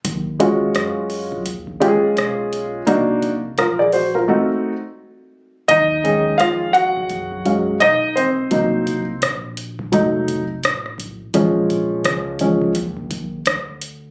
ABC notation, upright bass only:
X:1
M:4/4
L:1/16
Q:"Swing 16ths" 1/4=85
K:Ebm
V:1 name="Upright bass" clef=bass
E,,4 G,,4 E,,3 z C,,4 | =C,,4 B,,,4 z8 | E,,4 F,,4 G,,4 C,,4 | =C,,4 B,,,4 F,,,4 =A,,,4 |
B,,,4 D,,4 E,,4 =D,,4 |]